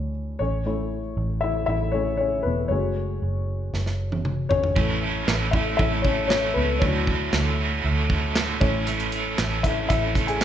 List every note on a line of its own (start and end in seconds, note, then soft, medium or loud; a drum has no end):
0.00 0.36 D2 medium
0.00 0.42 F#3 soft
0.00 0.11 C#4 medium
0.00 0.41 D4 soft
0.00 0.42 E4 medium
0.00 0.39 C#5 medium
0.39 1.13 A1 medium
0.39 0.65 C#4 medium
0.39 1.45 C#5 medium
0.66 1.00 A3 medium
0.66 1.00 C#4 soft
0.66 1.00 E4 medium
1.17 1.65 A1 medium
1.41 1.67 E4 medium
1.41 1.65 E5 medium
1.66 2.41 A1 medium
1.66 1.93 E4 medium
1.66 1.91 E5 medium
1.92 2.17 A3 soft
1.92 2.18 C#4 medium
1.92 2.17 E4 soft
1.92 2.16 C#5 medium
2.17 2.44 C#4 medium
2.17 2.45 C#5 medium
2.43 2.69 E1 medium
2.43 2.69 B3 medium
2.43 2.68 B4 medium
2.68 3.18 F#1 medium
2.68 4.72 G#3 soft
2.68 4.72 A3 soft
2.68 4.21 C#4 medium
2.68 4.73 F#4 soft
2.68 4.20 C#5 medium
3.22 3.70 F#1 medium
3.73 4.47 F#1 medium
3.73 snare soft
3.86 snare soft
4.12 high tom medium
4.25 mid tom medium
4.49 4.75 G#1 medium
4.49 4.74 C#4 medium
4.49 5.49 C#5 medium
4.49 floor tom medium
4.64 floor tom medium
4.75 5.24 A1 medium
4.75 5.02 A2 medium
4.75 5.02 E3 medium
4.75 5.49 A3 soft
4.75 5.02 A3 medium
4.75 5.49 C#4 soft
4.75 5.01 C#4 medium
4.75 5.50 E4 medium
4.75 5.01 E4 medium
4.75 4.99 A4 medium
4.75 kick medium
5.01 5.27 A3 soft
5.01 5.27 C#4 soft
5.01 5.27 E4 soft
5.01 5.27 A4 soft
5.27 5.75 A1 medium
5.27 5.53 A2 medium
5.27 5.53 E3 medium
5.27 5.53 A3 medium
5.27 5.54 C#4 medium
5.27 5.53 E4 medium
5.27 5.51 A4 medium
5.27 snare loud
5.27 clap medium
5.51 5.78 C#4 soft
5.51 5.79 E4 medium
5.51 5.78 E4 medium
5.51 5.79 A4 medium
5.51 5.75 E5 medium
5.51 kick medium
5.56 5.77 A3 soft
5.77 6.52 A1 medium
5.77 6.04 A3 medium
5.77 6.02 A3 soft
5.77 6.02 C#4 soft
5.77 6.05 C#4 medium
5.77 6.03 E4 medium
5.77 6.04 E4 medium
5.77 6.02 E5 medium
5.77 kick medium
5.81 6.03 A4 medium
6.02 6.29 C#4 medium
6.02 6.31 E4 soft
6.02 6.30 A4 medium
6.02 6.26 C#5 medium
6.02 kick medium
6.06 6.30 A3 soft
6.06 6.30 C#4 soft
6.27 6.56 A2 medium
6.27 6.56 E3 medium
6.27 6.56 A3 medium
6.27 6.54 C#4 medium
6.27 6.56 C#4 medium
6.27 6.53 C#5 medium
6.27 snare loud
6.27 clap medium
6.32 6.56 E4 medium
6.32 6.54 A4 medium
6.54 6.80 C#2 medium
6.54 6.80 B3 medium
6.54 6.82 E4 soft
6.54 6.82 A4 soft
6.54 6.81 B4 medium
6.58 6.81 A3 soft
6.58 6.82 C#4 soft
6.79 7.29 D2 medium
6.79 7.07 D3 medium
6.79 7.15 F#3 soft
6.79 7.08 A3 medium
6.79 8.32 C#4 medium
6.79 7.16 D4 soft
6.79 7.16 E4 medium
6.79 7.08 E4 medium
6.79 8.31 C#5 medium
6.79 kick medium
6.83 7.08 F#4 medium
6.83 7.06 A4 medium
7.07 7.33 E4 soft
7.07 7.33 F#4 soft
7.07 7.33 A4 soft
7.07 kick medium
7.33 7.81 D2 medium
7.33 7.59 D3 medium
7.33 7.59 A3 medium
7.33 7.59 E4 medium
7.33 7.58 F#4 medium
7.33 7.57 A4 medium
7.33 snare loud
7.33 clap medium
7.58 7.84 E4 soft
7.58 7.85 F#4 soft
7.58 7.84 A4 soft
7.84 8.58 D2 medium
7.84 8.10 A3 medium
7.84 8.11 E4 medium
7.84 8.10 F#4 medium
7.84 8.08 A4 medium
8.10 8.35 E4 soft
8.10 8.36 F#4 soft
8.10 8.36 A4 medium
8.10 kick medium
8.35 8.61 D3 medium
8.35 8.62 A3 medium
8.35 8.61 E4 medium
8.35 8.62 F#4 medium
8.35 8.60 A4 medium
8.35 snare loud
8.35 clap medium
8.60 9.35 A1 medium
8.60 10.44 A3 medium
8.60 8.86 A3 soft
8.60 9.61 C#4 medium
8.60 8.87 C#4 soft
8.60 9.64 E4 medium
8.60 8.87 E4 soft
8.60 8.87 A4 medium
8.60 9.60 C#5 medium
8.60 kick loud
8.87 9.13 A2 medium
8.87 9.13 E3 medium
8.87 9.13 A3 medium
8.87 9.13 C#4 medium
8.87 9.12 E4 medium
8.87 9.11 A4 medium
8.87 closed hi-hat medium
9.00 closed hi-hat soft
9.12 9.38 A3 soft
9.12 9.38 C#4 soft
9.12 9.39 E4 soft
9.12 9.38 A4 soft
9.12 closed hi-hat medium
9.38 9.86 A1 medium
9.38 9.64 A2 medium
9.38 9.64 E3 medium
9.38 9.64 A3 medium
9.38 9.64 C#4 medium
9.38 9.63 E4 medium
9.38 9.62 A4 medium
9.38 snare medium
9.38 clap medium
9.38 closed hi-hat medium
9.63 9.88 A3 soft
9.63 9.89 C#4 soft
9.63 9.90 E4 soft
9.63 9.71 E4 medium
9.63 9.90 A4 medium
9.63 9.69 E5 medium
9.63 kick medium
9.63 closed hi-hat medium
9.89 10.44 A1 medium
9.89 10.15 A3 medium
9.89 10.16 C#4 medium
9.89 10.26 E4 medium
9.89 10.14 E4 medium
9.89 10.13 A4 medium
9.89 10.25 E5 medium
9.89 kick medium
9.89 closed hi-hat medium
10.15 10.40 A3 soft
10.15 10.40 C#4 soft
10.15 10.41 E4 medium
10.15 10.41 A4 medium
10.15 kick medium
10.15 closed hi-hat medium
10.27 10.44 G#4 medium
10.27 10.44 G#5 medium
10.27 closed hi-hat soft
10.40 10.44 A2 medium
10.40 10.44 E3 medium
10.40 10.44 A3 medium
10.40 snare medium
10.40 closed hi-hat medium